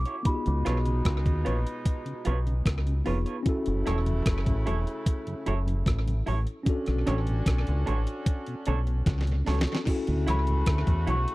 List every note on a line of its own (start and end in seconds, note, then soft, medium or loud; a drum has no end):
0.00 0.20 C#4 medium
0.00 0.21 E4 medium
0.00 0.22 F#4 medium
0.00 0.23 A4 medium
0.00 0.27 D6 loud
0.05 0.16 E4 medium
0.05 0.15 F#4 soft
0.05 0.15 C#5 medium
0.05 closed hi-hat soft
0.23 3.02 B2 medium
0.23 3.02 G#3 medium
0.23 3.01 B3 medium
0.23 3.02 D#4 medium
0.23 3.03 F4 medium
0.23 2.62 B5 medium
0.23 kick loud
0.23 closed hi-hat medium
0.29 0.34 G4 medium
0.35 3.06 G#4 medium
0.46 0.64 C#2 medium
0.46 0.54 C#3 medium
0.46 closed hi-hat medium
0.65 1.01 B1 medium
0.65 0.73 F3 medium
0.65 0.73 B3 medium
0.65 0.74 C#4 medium
0.65 0.77 F4 medium
0.65 0.78 B4 medium
0.65 0.78 C#5 medium
0.65 cross-stick medium
0.65 closed hi-hat medium
0.85 0.94 C#3 medium
0.85 closed hi-hat medium
1.05 1.23 C#2 medium
1.05 kick medium
1.05 cross-stick loud
1.05 closed hi-hat medium
1.25 1.43 D#2 medium
1.25 1.33 C#3 medium
1.25 kick medium
1.25 closed hi-hat soft
1.45 1.64 A#1 medium
1.45 1.53 F3 medium
1.45 1.54 B3 medium
1.45 1.54 C#4 medium
1.45 1.57 F4 medium
1.45 1.58 B4 medium
1.45 1.58 C#5 medium
1.45 closed hi-hat medium
1.67 closed hi-hat medium
1.85 kick medium
1.85 closed hi-hat medium
2.05 2.14 C#3 medium
2.05 closed hi-hat soft
2.24 2.61 B1 medium
2.24 2.33 F3 medium
2.24 2.34 B3 medium
2.24 2.34 C#4 medium
2.24 2.37 F4 medium
2.24 2.38 B4 medium
2.24 2.38 C#5 medium
2.24 closed hi-hat medium
2.46 2.54 C#3 soft
2.46 closed hi-hat soft
2.66 3.01 C#2 medium
2.66 kick loud
2.66 cross-stick loud
2.66 closed hi-hat medium
2.87 2.94 C#3 medium
2.87 closed hi-hat soft
3.04 3.24 F1 medium
3.04 3.14 F3 medium
3.04 3.45 B3 medium
3.04 3.14 B3 medium
3.04 3.15 C#4 medium
3.04 3.46 D#4 medium
3.04 3.18 F4 medium
3.04 3.46 F4 medium
3.04 3.47 G#4 medium
3.04 3.18 B4 medium
3.04 3.19 C#5 medium
3.04 open hi-hat medium
3.26 3.36 F4 medium
3.26 3.36 B4 medium
3.26 3.35 C#5 medium
3.26 closed hi-hat soft
3.43 6.22 C#3 medium
3.43 6.22 A3 medium
3.43 6.61 C#4 medium
3.43 6.62 E4 medium
3.43 6.22 E4 medium
3.43 6.63 F#4 medium
3.43 kick medium
3.43 closed hi-hat medium
3.49 6.64 A4 loud
3.66 3.84 F#1 medium
3.66 3.74 F#2 medium
3.66 3.75 C#3 medium
3.66 closed hi-hat medium
3.86 4.21 E1 medium
3.86 3.94 F#3 medium
3.86 3.95 A3 medium
3.86 3.98 E4 medium
3.86 3.94 E4 medium
3.86 3.98 A4 medium
3.86 3.99 C#5 medium
3.86 cross-stick medium
3.86 closed hi-hat medium
4.06 4.14 F#2 medium
4.06 4.14 C#3 medium
4.06 closed hi-hat soft
4.26 4.44 F#1 medium
4.26 kick loud
4.26 cross-stick loud
4.26 closed hi-hat medium
4.46 4.64 A1 medium
4.46 4.55 F#2 medium
4.46 4.55 C#3 medium
4.46 kick medium
4.46 closed hi-hat soft
4.66 4.85 E1 medium
4.66 4.75 F#3 medium
4.66 4.75 A3 medium
4.66 4.78 E4 medium
4.66 4.75 E4 medium
4.66 4.78 A4 medium
4.66 4.79 C#5 medium
4.66 closed hi-hat medium
4.87 closed hi-hat soft
5.06 kick loud
5.06 closed hi-hat loud
5.27 5.35 F#2 medium
5.27 5.35 C#3 medium
5.27 closed hi-hat soft
5.46 5.82 F#1 medium
5.46 5.54 F#3 medium
5.46 5.54 A3 medium
5.46 5.58 E4 medium
5.46 5.55 E4 medium
5.46 5.59 A4 medium
5.46 5.59 C#5 loud
5.46 closed hi-hat medium
5.66 5.74 F#2 medium
5.66 5.75 C#3 medium
5.66 closed hi-hat soft
5.86 6.21 A1 medium
5.86 kick loud
5.86 cross-stick loud
5.86 closed hi-hat medium
6.06 6.14 F#2 medium
6.06 6.15 C#3 medium
6.06 closed hi-hat soft
6.26 6.45 A1 medium
6.26 6.35 F#3 medium
6.26 6.35 A3 medium
6.26 6.38 E4 medium
6.26 6.35 E4 medium
6.26 6.39 A4 medium
6.26 6.39 C#5 medium
6.26 open hi-hat medium
6.47 closed hi-hat soft
6.63 9.41 C#4 medium
6.63 9.43 C#4 medium
6.63 9.42 D4 medium
6.63 9.43 F#4 medium
6.63 kick loud
6.63 closed hi-hat medium
6.67 9.43 F#4 medium
6.67 9.44 A4 medium
6.86 7.05 B1 medium
6.86 6.95 B2 medium
6.86 cross-stick medium
6.86 closed hi-hat soft
7.06 7.42 A1 loud
7.06 7.15 D3 medium
7.06 7.15 A3 medium
7.06 7.15 C#4 medium
7.06 7.18 D4 medium
7.06 7.19 A4 medium
7.06 7.19 C#5 loud
7.06 cross-stick medium
7.06 closed hi-hat medium
7.27 7.35 B2 medium
7.27 closed hi-hat soft
7.46 7.64 B1 medium
7.46 kick loud
7.46 cross-stick loud
7.46 closed hi-hat loud
7.67 7.85 C#2 medium
7.67 7.75 B2 medium
7.67 closed hi-hat soft
7.86 8.05 A1 medium
7.86 7.95 D3 medium
7.86 7.95 A3 medium
7.86 7.95 C#4 medium
7.86 7.98 D4 medium
7.86 7.99 A4 medium
7.86 7.99 C#5 medium
7.86 closed hi-hat medium
8.07 closed hi-hat medium
8.26 kick loud
8.26 closed hi-hat medium
8.47 8.55 B2 medium
8.47 closed hi-hat soft
8.66 9.02 B1 medium
8.66 8.75 D3 medium
8.66 8.75 A3 medium
8.66 8.76 C#4 medium
8.66 8.79 D4 medium
8.66 8.79 A4 medium
8.66 8.79 C#5 medium
8.66 closed hi-hat medium
8.87 8.96 B2 medium
8.87 closed hi-hat soft
9.06 9.41 C#2 medium
9.06 kick loud
9.06 snare medium
9.06 closed hi-hat medium
9.21 snare medium
9.27 9.35 B2 medium
9.27 closed hi-hat soft
9.45 9.65 C#2 medium
9.45 9.55 D3 medium
9.45 9.55 A3 medium
9.45 9.83 C#4 medium
9.45 9.55 C#4 medium
9.45 9.86 D4 medium
9.45 9.59 D4 medium
9.45 9.87 F#4 medium
9.45 9.59 A4 medium
9.45 9.87 A4 medium
9.45 9.60 C#5 medium
9.45 snare medium
9.45 open hi-hat medium
9.61 snare medium
9.67 9.77 D4 soft
9.67 9.77 A4 medium
9.67 9.76 C#5 medium
9.67 closed hi-hat soft
9.75 snare medium
9.84 11.35 C#3 medium
9.84 11.35 A3 medium
9.84 11.35 C#4 medium
9.84 11.35 E4 medium
9.84 11.35 F#4 medium
9.84 kick medium
9.84 crash medium
9.88 11.35 F#4 medium
9.88 11.35 A4 medium
10.07 10.16 D2 medium
10.07 10.25 D2 medium
10.07 10.15 A2 medium
10.07 closed hi-hat soft
10.27 10.62 C#2 medium
10.27 10.35 E3 medium
10.27 10.35 F#3 medium
10.27 10.36 C#4 medium
10.27 10.39 E4 medium
10.27 10.39 F#4 medium
10.27 10.40 C#5 loud
10.27 11.05 B5 medium
10.27 cross-stick medium
10.27 closed hi-hat medium
10.47 10.56 D2 medium
10.47 10.56 A2 medium
10.47 closed hi-hat medium
10.66 10.85 D2 medium
10.66 kick loud
10.66 cross-stick loud
10.66 closed hi-hat loud
10.87 10.96 D2 soft
10.87 11.05 E2 medium
10.87 10.96 A2 medium
10.87 kick medium
10.87 closed hi-hat soft
11.07 11.25 B1 medium
11.07 11.15 E3 medium
11.07 11.15 F#3 medium
11.07 11.16 C#4 medium
11.07 11.19 E4 medium
11.07 11.19 F#4 medium
11.07 11.20 C#5 medium
11.07 11.35 C#6 medium
11.07 closed hi-hat medium
11.28 closed hi-hat medium